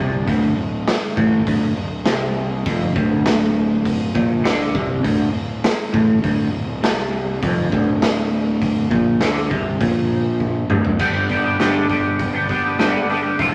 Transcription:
0.00 0.25 C2 medium
0.00 0.26 C3 loud
0.27 0.55 D1 medium
0.27 0.56 D2 loud
0.27 kick loud
0.27 open hi-hat medium
0.57 0.84 D1 medium
0.57 0.81 D2 medium
0.87 snare loud
0.87 open hi-hat medium
1.16 1.44 A1 medium
1.16 1.45 A2 loud
1.16 kick loud
1.46 1.74 D1 loud
1.46 1.75 D2 medium
1.46 kick medium
1.46 open hi-hat medium
1.76 2.04 D1 medium
1.76 2.00 D2 medium
2.05 2.61 C2 medium
2.05 2.65 C3 loud
2.05 snare loud
2.05 open hi-hat medium
2.66 2.93 F1 medium
2.66 2.94 F2 medium
2.66 kick loud
2.66 open hi-hat medium
2.96 4.11 D1 medium
2.96 4.14 D2 loud
2.96 kick loud
3.26 snare loud
3.26 open hi-hat medium
3.85 kick medium
3.85 open hi-hat medium
4.15 4.43 A#1 medium
4.15 4.44 A#2 loud
4.15 kick loud
4.44 4.72 D2 medium
4.44 4.73 D3 loud
4.44 snare loud
4.44 open hi-hat medium
4.60 snare soft
4.74 5.02 C2 medium
4.74 5.03 C3 loud
4.74 kick loud
5.03 5.32 D1 medium
5.03 5.31 D2 loud
5.03 kick loud
5.03 open hi-hat medium
5.33 5.61 D1 medium
5.33 5.57 D2 medium
5.64 snare loud
5.64 open hi-hat medium
5.93 6.21 A1 medium
5.93 6.22 A2 loud
5.93 kick loud
6.22 6.51 D1 loud
6.22 6.51 D2 loud
6.22 kick loud
6.22 open hi-hat medium
6.52 6.80 D1 medium
6.52 6.76 D2 medium
6.82 7.38 C2 medium
6.82 7.41 C3 loud
6.82 snare loud
6.82 open hi-hat medium
6.98 snare soft
7.43 7.70 F1 medium
7.43 7.71 F2 loud
7.43 kick loud
7.43 open hi-hat medium
7.72 8.87 D1 medium
7.72 8.90 D2 loud
7.72 kick loud
8.02 snare loud
8.02 open hi-hat medium
8.62 kick loud
8.62 open hi-hat medium
8.91 9.19 A#1 medium
8.91 9.20 A#2 loud
8.91 kick loud
9.21 9.49 D2 medium
9.21 9.50 D3 loud
9.21 snare loud
9.21 open hi-hat medium
9.36 snare soft
9.50 9.79 C2 medium
9.50 9.79 C3 medium
9.50 kick loud
9.80 10.66 A#1 medium
9.80 10.69 A#2 loud
9.80 kick loud
9.80 open hi-hat medium
10.40 kick medium
10.70 10.97 D1 medium
10.70 10.99 D2 loud
10.70 mid tom medium
10.85 floor tom medium
10.99 12.15 G1 medium
10.99 11.44 G2 medium
10.99 11.44 D3 medium
10.99 11.15 G3 medium
10.99 11.14 B3 medium
10.99 11.14 D4 medium
10.99 11.13 G4 medium
10.99 kick loud
10.99 crash medium
11.14 11.28 G3 soft
11.14 11.29 B3 medium
11.14 11.30 D4 medium
11.14 11.30 G4 medium
11.29 11.45 G3 medium
11.29 11.44 B3 medium
11.29 11.44 D4 medium
11.29 11.43 G4 medium
11.29 kick medium
11.29 open hi-hat soft
11.44 11.58 G3 soft
11.44 11.59 B3 medium
11.44 11.60 D4 medium
11.44 11.60 G4 medium
11.59 12.19 G2 medium
11.59 12.19 D3 medium
11.59 11.88 G3 medium
11.59 11.88 B3 medium
11.59 11.89 D4 medium
11.59 11.89 G4 medium
11.59 snare medium
11.59 open hi-hat medium
11.89 12.34 G3 medium
11.89 12.33 B3 medium
11.89 12.34 D4 medium
11.89 12.32 G4 medium
11.89 kick medium
11.89 open hi-hat soft
12.19 12.46 G1 medium
12.19 kick loud
12.19 open hi-hat medium
12.34 12.48 G3 medium
12.34 12.48 B3 medium
12.34 12.50 D4 medium
12.34 12.49 G4 medium
12.49 12.65 G3 medium
12.49 12.64 B3 medium
12.49 12.65 D4 medium
12.49 12.63 G4 medium
12.49 kick medium
12.49 open hi-hat soft
12.64 12.78 G3 medium
12.64 12.78 B3 medium
12.64 12.79 D4 medium
12.64 12.79 G4 medium
12.79 13.37 G2 medium
12.79 13.37 D3 medium
12.79 13.07 G3 medium
12.79 13.08 B3 medium
12.79 13.10 D4 medium
12.79 13.09 G4 medium
12.79 snare loud
12.79 open hi-hat medium
13.09 13.24 G3 medium
13.09 13.24 B3 medium
13.09 13.24 D4 medium
13.09 13.22 G4 medium
13.09 open hi-hat soft
13.23 13.38 G3 medium
13.23 13.37 B3 medium
13.23 13.40 D4 medium
13.23 13.37 G4 medium
13.38 13.54 F1 loud
13.38 13.54 D2 medium
13.38 13.54 A2 medium
13.38 13.52 D3 medium
13.38 13.52 A3 medium
13.38 13.52 C4 medium
13.38 13.51 F4 medium
13.38 kick medium
13.38 open hi-hat medium

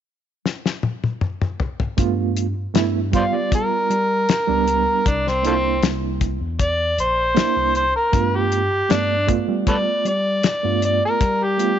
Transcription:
0.46 snare medium
0.66 snare medium
0.83 high tom medium
1.04 high tom medium
1.21 mid tom medium
1.42 mid tom medium
1.60 floor tom medium
1.80 floor tom medium
1.97 2.53 G2 medium
1.97 2.44 A3 medium
1.97 2.45 B3 medium
1.97 2.45 F4 medium
1.97 kick loud
1.97 closed hi-hat medium
2.37 closed hi-hat medium
2.56 2.66 G2 soft
2.74 3.11 G2 medium
2.74 2.98 A3 medium
2.74 2.99 B3 medium
2.74 2.99 E4 medium
2.74 snare loud
2.74 closed hi-hat medium
3.12 3.23 G2 soft
3.12 3.94 G3 medium
3.12 3.95 B3 medium
3.12 3.95 F4 medium
3.12 kick medium
3.12 closed hi-hat medium
3.16 3.23 C5 medium
3.16 3.25 D5 medium
3.16 3.37 F5 medium
3.33 3.69 G3 medium
3.33 3.52 D5 medium
3.52 5.09 A#4 medium
3.52 kick loud
3.52 closed hi-hat medium
3.90 4.26 G3 medium
3.90 closed hi-hat medium
4.29 snare loud
4.29 closed hi-hat medium
4.47 4.85 C#2 medium
4.47 5.05 G3 medium
4.47 5.05 B3 medium
4.47 5.06 D4 medium
4.68 closed hi-hat medium
5.06 5.79 C2 loud
5.06 5.30 D4 medium
5.06 kick loud
5.06 closed hi-hat medium
5.27 5.44 C4 medium
5.27 snare soft
5.43 6.37 A#3 medium
5.43 6.38 D4 medium
5.43 6.38 E4 medium
5.43 closed hi-hat medium
5.47 5.54 F3 medium
5.47 5.53 A3 medium
5.47 5.83 C4 medium
5.82 6.37 C2 medium
5.82 snare loud
5.82 closed hi-hat medium
6.21 kick medium
6.21 closed hi-hat medium
6.41 6.94 E2 medium
6.59 6.98 D5 medium
6.59 kick loud
6.59 closed hi-hat medium
6.98 7.33 A#1 medium
6.98 7.74 C5 medium
6.98 closed hi-hat medium
7.35 7.82 A#3 medium
7.35 7.83 D4 medium
7.35 7.83 E4 medium
7.35 snare loud
7.35 closed hi-hat medium
7.57 7.92 C2 medium
7.75 7.95 C5 medium
7.75 closed hi-hat medium
7.96 8.37 A#4 loud
8.12 8.68 G2 medium
8.12 8.60 A3 medium
8.12 8.60 B3 medium
8.12 8.61 F4 medium
8.12 kick loud
8.12 closed hi-hat medium
8.36 8.93 G4 medium
8.52 closed hi-hat medium
8.72 8.81 G2 soft
8.89 9.26 G2 medium
8.89 9.14 A3 medium
8.89 9.14 B3 medium
8.89 9.15 D4 medium
8.89 9.28 D4 medium
8.89 snare loud
8.89 closed hi-hat medium
9.27 9.39 G2 soft
9.27 10.09 A3 medium
9.27 10.10 B3 medium
9.27 10.10 F4 medium
9.27 kick medium
9.27 closed hi-hat medium
9.48 9.84 G3 medium
9.67 9.76 A4 medium
9.67 9.76 B4 medium
9.67 10.05 D5 medium
9.67 kick loud
9.67 closed hi-hat medium
10.05 10.41 G3 medium
10.05 10.81 D5 medium
10.05 closed hi-hat medium
10.43 snare loud
10.43 closed hi-hat medium
10.63 11.00 G2 medium
10.63 11.21 A3 medium
10.63 11.21 B3 medium
10.63 11.22 F4 medium
10.82 11.03 D5 medium
10.82 closed hi-hat medium
11.05 11.45 A#4 medium
11.21 11.79 G3 medium
11.21 kick loud
11.21 closed hi-hat medium
11.43 11.79 G4 medium
11.58 11.79 A3 medium
11.58 11.79 B3 medium
11.58 11.79 F4 medium
11.58 closed hi-hat medium

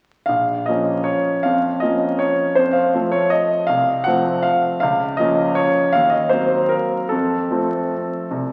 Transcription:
0.26 0.66 A#1 soft
0.26 0.66 F5 medium
0.66 1.42 F3 soft
0.66 1.42 A#3 soft
0.66 1.43 C#4 soft
0.66 1.06 D#5 medium
1.04 1.44 C#5 medium
1.43 1.82 F2 soft
1.43 1.82 F5 medium
1.80 2.54 F3 soft
1.80 2.54 A#3 soft
1.80 2.54 C#4 soft
1.80 2.20 D#5 medium
2.19 2.57 C#5 medium
2.55 2.94 F2 soft
2.55 2.75 C5 medium
2.73 3.12 F5 medium
2.95 3.66 F3 soft
2.95 3.65 A3 soft
2.95 3.66 C4 soft
3.12 3.32 C#5 medium
3.30 3.68 D#5 medium
3.67 4.05 C2 soft
3.67 4.05 F5 medium
4.04 4.78 F3 soft
4.04 4.78 A3 soft
4.04 4.79 C4 soft
4.04 4.43 F#5 medium
4.43 4.79 F5 medium
4.80 5.18 C#2 soft
4.80 5.18 F5 medium
5.17 5.90 F3 soft
5.17 5.90 A#3 soft
5.17 5.90 C#4 soft
5.17 5.56 D#5 medium
5.55 5.93 C#5 medium
5.93 6.30 D#2 soft
5.93 6.11 F5 medium
6.10 6.30 D#5 medium
6.29 7.07 F#3 soft
6.29 7.07 A#3 soft
6.29 7.08 C4 soft
6.29 6.70 C5 medium
6.69 7.10 A#4 medium
7.09 7.50 F2 soft
7.09 8.52 A4 medium
7.51 8.28 F3 soft
7.51 8.28 A3 soft
7.51 8.28 C4 soft
8.31 8.52 C2 soft

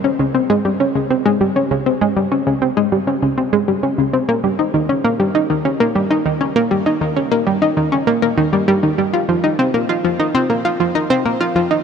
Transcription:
0.04 0.11 C#4 medium
0.19 0.27 C#3 medium
0.35 0.45 C4 medium
0.50 0.54 G#3 loud
0.65 0.72 G3 medium
0.80 0.87 C#4 medium
0.95 1.02 C#3 medium
1.10 1.21 C4 medium
1.26 1.30 G#3 loud
1.41 1.48 G3 medium
1.56 1.63 C#4 medium
1.71 1.78 C#3 medium
1.86 1.97 C4 medium
2.01 2.06 G#3 medium
2.17 2.24 G3 medium
2.32 2.39 C#4 medium
2.47 2.54 C#3 medium
2.62 2.73 C4 medium
2.77 2.81 G#3 loud
2.92 2.99 G3 medium
3.07 3.14 C#4 medium
3.23 3.30 C#3 medium
3.38 3.48 C4 medium
3.53 3.57 G#3 loud
3.68 3.75 G3 medium
3.83 3.90 C#4 medium
3.98 4.05 C#3 medium
4.13 4.24 C4 medium
4.29 4.33 A#3 loud
4.44 4.51 G3 medium
4.59 4.66 D#4 medium
4.74 4.81 D#3 medium
4.89 5.00 C#4 medium
5.04 5.09 A#3 loud
5.20 5.27 G3 medium
5.35 5.42 D#4 medium
5.50 5.57 D#3 medium
5.65 5.76 C#4 medium
5.80 5.84 A#3 loud
5.95 6.02 G3 medium
6.11 6.18 D#4 medium
6.26 6.33 D#3 medium
6.41 6.51 C#4 medium
6.56 6.60 A#3 loud
6.71 6.78 G3 medium
6.86 6.93 D#4 medium
7.01 7.08 D#3 medium
7.16 7.27 C#4 medium
7.32 7.36 A#3 loud
7.47 7.54 G3 medium
7.62 7.69 D#4 medium
7.77 7.84 D#3 medium
7.92 8.03 C#4 medium
8.07 8.12 A#3 loud
8.22 8.27 A#3 loud
8.38 8.45 D#3 medium
8.53 8.64 G3 medium
8.68 8.72 G3 loud
8.83 8.94 D#3 medium
8.98 9.05 G3 medium
9.13 9.21 F4 medium
9.29 9.36 F3 medium
9.44 9.54 D#4 medium
9.59 9.63 C4 medium
9.74 9.81 A#3 medium
9.89 9.96 F4 medium
10.04 10.12 F3 medium
10.20 10.30 D#4 medium
10.35 10.39 C4 loud
10.50 10.57 A#3 medium
10.65 10.72 F4 medium
10.80 10.87 F3 medium
10.95 11.06 D#4 medium
11.10 11.15 C4 loud
11.25 11.33 A#3 medium
11.41 11.48 F4 medium
11.56 11.63 F3 medium
11.71 11.82 D#4 medium

